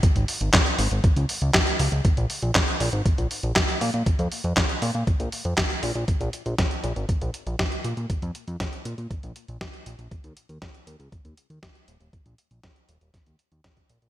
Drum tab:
HH |xxoxxxoxxxoxxxox|xxoxxxoxxxoxxxox|xxoxxxoxxxoxxxox|xxxxxxxxxxxxxxxx|
CP |----x-------x---|----x-------x---|----x-------x---|----------------|
SD |----o-------o---|----o-------o---|----o-------o---|----o-------o---|
BD |o---o---o---o---|o---o---o---o---|o---o---o---o---|o---o---o---o---|

HH |xxxxxxxxxxxxxxxx|xxxxxxxxxxxxxxxx|xxxxxxxxxxxxxxxx|
CP |----------------|----------------|----------------|
SD |----o-------o---|----o-------o---|----o---o---o---|
BD |o---o---o---o---|o---o---o---o---|o---o---o---oo--|